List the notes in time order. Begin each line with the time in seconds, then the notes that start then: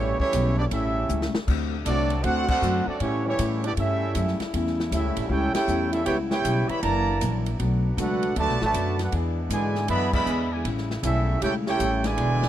Already playing: A1 A2 C#3 E3 G3 A3 C#4 E4 G4 C#5
0.19 E3 G3 A3 C#4 E4 G4 C#5, muted upright bass stroke, kick
0.33 B1 A2 G3 C#4 E4, hi-hat pedal, ride
0.57 B3 D4 E4 G4 D5
0.70 A1 A2 G3 C#4 E4 G4 A4 E5, ride
1.09 C#2 A2 G3 C#4 E4, hi-hat pedal
1.22 snare
1.35 snare
1.47 D2 C3 D3 F#3 A3 C4 D4 F#4, kick, crash
1.86 C2 D3 F#3 A3 C4 D4 F#4 A4 D5, hi-hat pedal, ride
2.10 ride
2.23 D2 D3 A3 C4 D4 F#4 A4 C5 F#5, ride
2.48 A3 C4 D4 F#4 A4 C5 F#5, kick, crash
2.61 F#2 D3 A3 C4 F#4, hi-hat pedal
2.87 F#3 A3 C4 D4 F#4 A4 D5, muted upright bass stroke
2.99 A2 C#3 E3 G3 A3 C#4 E4 G4 C#5, ride
3.26 E3 G3 A3 C#4 E4 G4 C#5
3.38 A2 G3 C#4 E4, hi-hat pedal, ride
3.64 B3 D4 E4 G4 D5, ride
3.76 G2 A2 G3 C#4 E4 G4 A4 E5, ride
4.15 F#2 A2 G3 C#4 E4, hi-hat pedal, ride
4.28 snare
4.40 muted upright bass stroke, snare, ride
4.53 E2 A2 G3 C#4 E4, ride
4.67 snare
4.80 snare
4.91 D2 A2 G3 C#4 E4 G4 A4 E5, hi-hat pedal, ride
5.04 C#2
5.17 A1, ride
5.29 C#2 A2 G3 C#4 E4 G4 A4 C#5 G5
5.54 C#4 E4 G4 A4 C#5 G5, muted upright bass stroke, snare, ride
5.68 E2 A2 G3 C#4 E4, hi-hat pedal
5.92 G3 C#4 E4 G4 A4 E5, ride
6.06 C#2 C#3 G3 B3 E4 G4 B4 C#5 G5, ride
6.10 E4
6.31 B3 E4 G4 B4 C#5 G5, snare
6.45 B1 C#3 G3 B3 E4, hi-hat pedal, ride
6.69 E3 G3 B3 G4 C#5 E5 B5, muted upright bass stroke, ride
6.82 F#1 F#2 D3 E3 F#3 A#3 D4 E4 D5 A5 A#5, ride
6.87 D4
7.21 A#1 F#2 E3 A#3 D4, hi-hat pedal, ride
7.46 ride
7.59 B1 B2 F#3 A3 B3 D4 F#4, ride
7.97 C#2 B2 F#3 A3 D4 F#4 A4 B4 F#5, hi-hat pedal, ride
8.23 ride
8.35 D2 B2 D3 F#3 A3 D4 F#4 A5, ride
8.39 B4 D5
8.48 B1, snare
8.61 A1 D3 F#3 A3 F#4 B4 D5 A5, snare
8.74 F#2 B2 F#3 A3 D4, hi-hat pedal, ride
8.99 A3 D4 F#4 A4 B4 F#5, snare, ride
9.12 E2 E3 G#3 B3 D4 E4 G#4, ride
9.50 G#2 B2 D3 E3 G#3 B3 D4 E4 G#4 B4 D5 G#5, hi-hat pedal, ride
9.75 snare
9.88 F#2 D3 E3 G#3 B3 D4 G#4 D5 E5 B5, ride
10.13 D3 G#3 B3 G#4 D5 E5 B5, kick, crash
10.26 E2 E3 B3 D4 G#4, hi-hat pedal
10.52 B2 D3 G#3 E4 B4 D5 G#5
10.65 A1 A2 C#3 G3 A3 C#4 E4, ride
10.78 snare
10.91 snare
11.03 B1 A2 G3 C#4 E4 G4 A4 E5, hi-hat pedal, ride
11.41 C#2 A2 G3 C#4 E4 G4 A4 C#5 G5, ride
11.67 C#4 E4 G4 A4 C#5 G5, snare
11.79 A1 A2 G3 C#4 E4, hi-hat pedal, ride
12.04 B2 D3 G#3 E4 B4 D5 G#5, snare, ride
12.18 E1 D3 E3 G#3 B3 D4 G#4, ride
12.42 snare